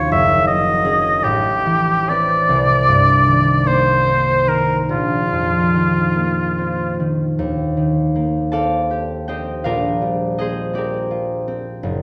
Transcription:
Already playing: D#2 F#3 C#4 D#4 F4 C#5
0.11 F#1 E5
0.47 F#3 D#5
0.85 C#4 G#4
1.23 A1 G4
1.66 E3
2.09 C4 B4 D5
2.49 C2
2.88 G2
3.27 D#3
3.65 A#3 C5
4.06 C4
4.46 D#3 A#4
4.89 A#1 F4
5.33 F2
5.74 D#3
6.15 A#3
6.58 C4
7.00 D#3
7.39 D#2
7.77 D#3
8.16 A#3
8.52 C4 A4 D5 F5 A5
8.91 G4
9.28 C4 G4 C5 D#5 G5
9.64 A#1 F4 A#4 D5 F5
10.02 G3
10.38 A#3 G#4 C5 D#5
10.73 C4 G4 D5
10.78 A#4
11.11 F4
11.48 C4
11.83 F#1

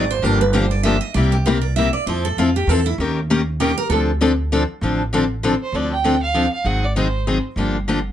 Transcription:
Already playing: G#1 D5
0.10 C5
0.22 G1 D3 F3 A#3 D4 G4 A#4
0.41 B4
0.53 D3 F3 A#3 D4 G4 C5
0.71 D5
0.83 D3 F3 A#3 D4 G4 E5
1.01 D#5
1.14 C2 C3 G3 A#3 E4 G4 D5
1.32 G4
1.46 C3 G3 A#3 E4 G4 A#4
1.62 D5
1.76 C3 G3 A#3 E4 G4 E5
1.93 D5
2.06 F2 F3 C4 E4 A4 C5
2.25 A4
2.36 F2 F3 C4 E4 F4 A4
2.56 G4
2.67 E2 F3 C4 E4 A4
2.86 E4
2.98 D#2 D#3 A#3 C#4 G4 A#4
3.30 D#3 A#3 C#4 G4 A#4
3.60 D#3 A#3 C#4 G4 A#4
3.78 A#4
3.89 D2 D3 F3 C4 D4 A4
4.21 D3 F3 C4 D4 A4
4.52 D3 F3 C4 D4 A4
4.81 A1 D3 F3 C4 D4 A4
5.13 D3 F3 C4 D4 A4
5.43 D3 F3 C4 D4 A4
5.63 C5
5.72 D2 D3 F3 C4 D4 A4 D5
5.93 G5
6.04 D3 F3 C4 D4 A4
6.23 F5
6.34 D3 F3 C4 D4 A4
6.53 F5
6.64 G#1 D#3 F#3 C4 D#4 G#4 F#5
6.84 D5
6.96 D#3 F#3 C4 D#4 G#4 C5
7.27 D#3 F#3 C4 D#4 G#4
7.56 G1 D3 F3 A#3 D4 G4
7.88 D3 F3 A#3 D4 G4

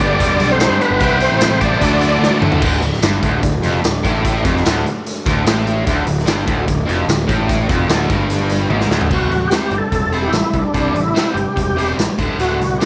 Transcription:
Already playing: G1 G2 D3 G3 B3 D4 G4 B5
0.00 G2 D3 G3 B3 D4 G4 D5
0.20 E1, kick, closed hi-hat
0.39 B1, closed hi-hat
0.49 C4 C5
0.60 G2 D3 G3 B3 D4 G4, snare, closed hi-hat, tambourine
0.70 G2
0.80 B3 B4, closed hi-hat
0.91 G1
1.00 C2 C3 G3 C4 E4 G4 C5, kick, closed hi-hat
1.20 C4 C5, closed hi-hat
1.30 A1
1.41 snare, closed hi-hat, tambourine
1.49 A1
1.61 C3 G3 C4 D4 E4 G4 C5 D5, kick, closed hi-hat
1.81 D2 A2 D3 A3 D4 F#4 D5, kick, closed hi-hat
2.01 closed hi-hat
2.19 D2, snare
2.40 D2 A2 D3 A3 F#4, mid tom
2.52 floor tom
2.61 D1 D2 A3 D4 F#4 D5, kick, crash
2.81 D1 D2, closed hi-hat
2.93 snare
3.02 G1 G2, snare, closed hi-hat, tambourine
3.22 D1 D2, kick, closed hi-hat
3.42 D1 D2, kick, closed hi-hat
3.63 F1 F2, closed hi-hat
3.82 D1 D2, snare, closed hi-hat, tambourine
4.04 A1 A2, kick, closed hi-hat
4.25 kick, closed hi-hat
4.44 F1 F2, kick, closed hi-hat
4.56 snare
4.65 D1 D2, snare, closed hi-hat, tambourine
4.86 closed hi-hat
5.07 closed hi-hat
5.26 D1 D2, kick, closed hi-hat
5.45 A1 A2, snare, closed hi-hat, tambourine
5.67 closed hi-hat
5.86 D1 D2 A3 D4 F#4 D5, kick, closed hi-hat
6.06 D1 D2, closed hi-hat
6.19 snare
6.27 G1 G2, snare, closed hi-hat, tambourine
6.46 D1 D2, kick, closed hi-hat
6.66 D1 D2, kick, closed hi-hat
6.87 F1 F2, closed hi-hat
7.06 D1 D2, snare, closed hi-hat, tambourine
7.27 A1 A2, kick, closed hi-hat
7.49 kick, closed hi-hat
7.69 F1 F2, kick, closed hi-hat
7.87 D1 D2, snare, closed hi-hat, tambourine
8.09 G1 G2, kick, closed hi-hat
8.30 closed hi-hat
8.50 closed hi-hat
8.69 G#1 G#2, high tom
8.81 snare
8.89 D1 D2, snare
9.01 floor tom
9.10 C2 C3 G3 C4 F#4, kick, crash
9.29 A1 C3 G3, closed hi-hat
9.48 C3 G4, closed hi-hat, tambourine
9.52 G3 C4, snare
9.71 G1 C3 G3, closed hi-hat
9.78 A4
9.92 E1 C3 G3, kick, closed hi-hat
10.12 C3 G3 C4, closed hi-hat
10.22 G4
10.28 E4
10.32 A1 C3 G3, snare, closed hi-hat, tambourine
10.53 C2 C3 G3, kick, closed hi-hat
10.59 D4
10.74 C2 C3 G3 C4, kick, closed hi-hat
10.94 A1 C3 G3, closed hi-hat
11.01 E4
11.14 C3 G3 C4, snare, closed hi-hat, tambourine
11.34 G1 C3 G3 G4, closed hi-hat
11.56 E1 C3 G3, kick, closed hi-hat
11.76 C3 G3 C4, closed hi-hat
11.96 A1 C3 G3, snare, closed hi-hat, tambourine
12.18 D1 D2 A2 D3, kick, closed hi-hat
12.39 D1 D2 A2 D3 F#4, closed hi-hat
12.59 C2 D2 A2, closed hi-hat
12.79 D2 A2 D3 G4, snare, closed hi-hat, tambourine

